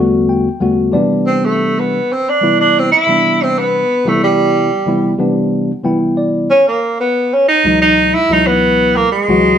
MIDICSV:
0, 0, Header, 1, 3, 480
1, 0, Start_track
1, 0, Tempo, 653595
1, 932, Time_signature, 4, 2, 24, 8
1, 7038, End_track
2, 0, Start_track
2, 0, Title_t, "Tenor saxophone"
2, 0, Program_c, 0, 66
2, 0, Note_on_c, 0, 59, 76
2, 173, Note_off_c, 0, 59, 0
2, 930, Note_on_c, 0, 60, 80
2, 1067, Note_on_c, 0, 57, 69
2, 1078, Note_off_c, 0, 60, 0
2, 1318, Note_on_c, 0, 59, 72
2, 1329, Note_off_c, 0, 57, 0
2, 1561, Note_on_c, 0, 60, 82
2, 1572, Note_off_c, 0, 59, 0
2, 1683, Note_on_c, 0, 62, 93
2, 1694, Note_off_c, 0, 60, 0
2, 1908, Note_off_c, 0, 62, 0
2, 1912, Note_on_c, 0, 62, 91
2, 2050, Note_on_c, 0, 60, 81
2, 2061, Note_off_c, 0, 62, 0
2, 2140, Note_off_c, 0, 60, 0
2, 2144, Note_on_c, 0, 64, 96
2, 2521, Note_on_c, 0, 60, 82
2, 2532, Note_off_c, 0, 64, 0
2, 2633, Note_on_c, 0, 59, 89
2, 2644, Note_off_c, 0, 60, 0
2, 2998, Note_on_c, 0, 57, 72
2, 3009, Note_off_c, 0, 59, 0
2, 3100, Note_off_c, 0, 57, 0
2, 3110, Note_on_c, 0, 55, 71
2, 3792, Note_off_c, 0, 55, 0
2, 4775, Note_on_c, 0, 61, 84
2, 4895, Note_off_c, 0, 61, 0
2, 4905, Note_on_c, 0, 58, 69
2, 5127, Note_off_c, 0, 58, 0
2, 5144, Note_on_c, 0, 59, 79
2, 5389, Note_on_c, 0, 61, 75
2, 5400, Note_off_c, 0, 59, 0
2, 5492, Note_off_c, 0, 61, 0
2, 5496, Note_on_c, 0, 63, 95
2, 5716, Note_off_c, 0, 63, 0
2, 5741, Note_on_c, 0, 63, 101
2, 5979, Note_on_c, 0, 64, 98
2, 5990, Note_off_c, 0, 63, 0
2, 6119, Note_on_c, 0, 63, 91
2, 6130, Note_off_c, 0, 64, 0
2, 6219, Note_on_c, 0, 59, 93
2, 6230, Note_off_c, 0, 63, 0
2, 6581, Note_on_c, 0, 58, 81
2, 6592, Note_off_c, 0, 59, 0
2, 6689, Note_off_c, 0, 58, 0
2, 6696, Note_on_c, 0, 56, 81
2, 7038, Note_off_c, 0, 56, 0
2, 7038, End_track
3, 0, Start_track
3, 0, Title_t, "Tine electric piano"
3, 0, Program_c, 1, 4
3, 0, Note_on_c, 1, 40, 72
3, 0, Note_on_c, 1, 50, 71
3, 0, Note_on_c, 1, 55, 66
3, 0, Note_on_c, 1, 57, 71
3, 0, Note_on_c, 1, 59, 70
3, 0, Note_on_c, 1, 66, 89
3, 214, Note_on_c, 1, 79, 62
3, 343, Note_off_c, 1, 40, 0
3, 343, Note_off_c, 1, 50, 0
3, 344, Note_off_c, 1, 55, 0
3, 348, Note_off_c, 1, 57, 0
3, 348, Note_off_c, 1, 59, 0
3, 349, Note_off_c, 1, 66, 0
3, 436, Note_off_c, 1, 79, 0
3, 441, Note_on_c, 1, 40, 63
3, 443, Note_on_c, 1, 50, 64
3, 445, Note_on_c, 1, 55, 62
3, 449, Note_on_c, 1, 78, 52
3, 451, Note_on_c, 1, 57, 63
3, 454, Note_on_c, 1, 59, 64
3, 458, Note_on_c, 1, 66, 71
3, 673, Note_off_c, 1, 78, 0
3, 674, Note_off_c, 1, 55, 0
3, 674, Note_on_c, 1, 48, 82
3, 681, Note_off_c, 1, 59, 0
3, 682, Note_on_c, 1, 52, 70
3, 683, Note_on_c, 1, 55, 75
3, 683, Note_on_c, 1, 74, 62
3, 687, Note_off_c, 1, 40, 0
3, 687, Note_off_c, 1, 50, 0
3, 690, Note_on_c, 1, 59, 74
3, 690, Note_on_c, 1, 62, 82
3, 692, Note_off_c, 1, 57, 0
3, 695, Note_off_c, 1, 66, 0
3, 911, Note_off_c, 1, 74, 0
3, 1456, Note_off_c, 1, 48, 0
3, 1460, Note_off_c, 1, 52, 0
3, 1461, Note_off_c, 1, 55, 0
3, 1464, Note_off_c, 1, 59, 0
3, 1464, Note_off_c, 1, 62, 0
3, 1770, Note_on_c, 1, 48, 65
3, 1774, Note_on_c, 1, 52, 61
3, 1776, Note_on_c, 1, 55, 59
3, 1780, Note_on_c, 1, 59, 64
3, 1787, Note_on_c, 1, 64, 75
3, 2133, Note_off_c, 1, 48, 0
3, 2135, Note_off_c, 1, 52, 0
3, 2136, Note_off_c, 1, 55, 0
3, 2138, Note_off_c, 1, 59, 0
3, 2142, Note_off_c, 1, 64, 0
3, 2255, Note_on_c, 1, 48, 59
3, 2263, Note_on_c, 1, 52, 58
3, 2265, Note_on_c, 1, 55, 57
3, 2270, Note_on_c, 1, 59, 62
3, 2273, Note_on_c, 1, 62, 73
3, 2803, Note_off_c, 1, 48, 0
3, 2807, Note_off_c, 1, 52, 0
3, 2808, Note_off_c, 1, 55, 0
3, 2811, Note_off_c, 1, 59, 0
3, 2812, Note_off_c, 1, 62, 0
3, 2977, Note_on_c, 1, 48, 79
3, 2979, Note_on_c, 1, 52, 68
3, 2983, Note_on_c, 1, 55, 70
3, 2987, Note_on_c, 1, 59, 65
3, 2994, Note_on_c, 1, 64, 86
3, 3437, Note_off_c, 1, 48, 0
3, 3438, Note_off_c, 1, 52, 0
3, 3440, Note_off_c, 1, 55, 0
3, 3442, Note_off_c, 1, 59, 0
3, 3445, Note_off_c, 1, 64, 0
3, 3570, Note_on_c, 1, 48, 73
3, 3575, Note_on_c, 1, 52, 64
3, 3579, Note_on_c, 1, 55, 69
3, 3582, Note_on_c, 1, 59, 66
3, 3583, Note_on_c, 1, 64, 81
3, 3760, Note_off_c, 1, 48, 0
3, 3762, Note_off_c, 1, 52, 0
3, 3764, Note_off_c, 1, 55, 0
3, 3766, Note_off_c, 1, 59, 0
3, 3766, Note_off_c, 1, 64, 0
3, 3805, Note_on_c, 1, 48, 82
3, 3808, Note_on_c, 1, 52, 71
3, 3813, Note_on_c, 1, 55, 78
3, 3817, Note_on_c, 1, 59, 79
3, 3819, Note_on_c, 1, 62, 79
3, 4186, Note_off_c, 1, 48, 0
3, 4187, Note_off_c, 1, 52, 0
3, 4190, Note_off_c, 1, 55, 0
3, 4192, Note_off_c, 1, 59, 0
3, 4193, Note_off_c, 1, 62, 0
3, 4284, Note_on_c, 1, 48, 62
3, 4288, Note_on_c, 1, 52, 69
3, 4292, Note_on_c, 1, 55, 57
3, 4293, Note_on_c, 1, 59, 70
3, 4294, Note_on_c, 1, 79, 59
3, 4299, Note_on_c, 1, 64, 81
3, 4516, Note_off_c, 1, 79, 0
3, 4533, Note_on_c, 1, 74, 62
3, 4755, Note_off_c, 1, 74, 0
3, 4767, Note_off_c, 1, 48, 0
3, 4769, Note_off_c, 1, 52, 0
3, 4771, Note_off_c, 1, 55, 0
3, 4772, Note_off_c, 1, 59, 0
3, 4775, Note_off_c, 1, 64, 0
3, 5611, Note_on_c, 1, 37, 67
3, 5616, Note_on_c, 1, 47, 57
3, 5617, Note_on_c, 1, 52, 58
3, 5620, Note_on_c, 1, 54, 60
3, 5624, Note_on_c, 1, 56, 61
3, 5628, Note_on_c, 1, 63, 78
3, 5972, Note_off_c, 1, 37, 0
3, 5974, Note_off_c, 1, 47, 0
3, 5975, Note_off_c, 1, 52, 0
3, 5976, Note_off_c, 1, 54, 0
3, 5978, Note_off_c, 1, 56, 0
3, 5980, Note_off_c, 1, 63, 0
3, 6091, Note_on_c, 1, 37, 62
3, 6093, Note_on_c, 1, 47, 59
3, 6098, Note_on_c, 1, 52, 58
3, 6100, Note_on_c, 1, 54, 60
3, 6101, Note_on_c, 1, 56, 56
3, 6103, Note_on_c, 1, 64, 63
3, 6639, Note_off_c, 1, 37, 0
3, 6639, Note_off_c, 1, 47, 0
3, 6642, Note_off_c, 1, 52, 0
3, 6643, Note_off_c, 1, 54, 0
3, 6644, Note_off_c, 1, 56, 0
3, 6645, Note_off_c, 1, 64, 0
3, 6817, Note_on_c, 1, 37, 78
3, 6820, Note_on_c, 1, 47, 69
3, 6824, Note_on_c, 1, 54, 74
3, 6825, Note_on_c, 1, 52, 75
3, 6829, Note_on_c, 1, 56, 67
3, 6829, Note_on_c, 1, 66, 91
3, 7038, Note_off_c, 1, 37, 0
3, 7038, Note_off_c, 1, 47, 0
3, 7038, Note_off_c, 1, 52, 0
3, 7038, Note_off_c, 1, 54, 0
3, 7038, Note_off_c, 1, 56, 0
3, 7038, Note_off_c, 1, 66, 0
3, 7038, End_track
0, 0, End_of_file